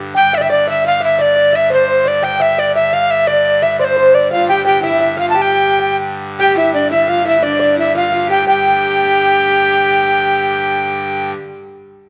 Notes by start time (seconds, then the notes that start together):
Already playing: G2 D3
0.14 G2 D3 G5
0.33 E5
0.38 D5 E5
0.42 E5
0.50 D5
0.67 E5
0.84 F5
1.00 E5
1.18 D5
1.36 D5
1.53 E5
1.70 C5
2.05 D5
2.23 G5
2.40 E5
2.58 D5
2.75 E5
2.93 F5
3.11 E5
3.27 D5
3.62 E5
3.79 C5 D5
3.84 C5
3.97 C5
4.14 D5
4.31 G2 D3 F4 F5
4.49 G4 G5
4.65 G4 G5
4.83 E4 E5
5.00 E5
5.17 F4 F5
5.30 A5
5.34 G4 G5 A5
5.42 G5
5.79 G5
6.39 G4 G5
6.57 E4 E5
6.73 D4 D5
6.91 E4 E5
7.07 F4 F5
7.25 E4 E5
7.42 D4 D5
7.59 D5
7.76 E4 E5
7.95 F4 F5
8.11 F4 F5
8.29 G4 G5
8.46 G2 D3 G4 G5